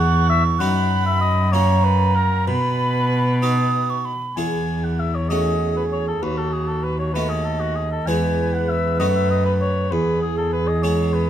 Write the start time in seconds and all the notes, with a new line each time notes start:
Already playing: E2 B3 E4 G#4 F#5 C#6
0.29 E5
0.60 F#2 B3 D#4 F#4 F#5 B5
1.06 E5
1.21 D#5
1.52 A#3 C#4 F#4 C#5 A#5
1.84 B4
2.15 A#4
2.47 B2 B4 B5
3.42 B3 D#4 F#4 D#6
3.90 C#6
4.05 B5
4.36 E2 B3 E4 G#4 G#5
4.84 F#5
5.00 E5
5.15 C#5
5.29 A3 C#4 F#4 G#4 D#5
5.76 B4
5.92 C#5
6.08 A4
6.22 D#2 F#4 B4
6.38 A4
6.53 G#4
6.68 A4
6.83 B4
6.99 C#5
7.14 A3 B3 F#4 B4 D#5
7.29 G#4
7.44 A4
7.60 F#4
7.75 G#4
7.91 A4
8.07 E2 G#3 B3 G#4 B4 G#5
8.53 F#5
8.69 E5
8.99 F#2 A3 B3 F#4 D#5
9.15 E5
9.31 D#5
9.46 B4
9.61 C#5
9.91 E2 G#4 B4
10.22 G#4
10.38 A4
10.52 B4
10.68 D#5
10.83 G#3 B3 G#4 C#5
11.13 B4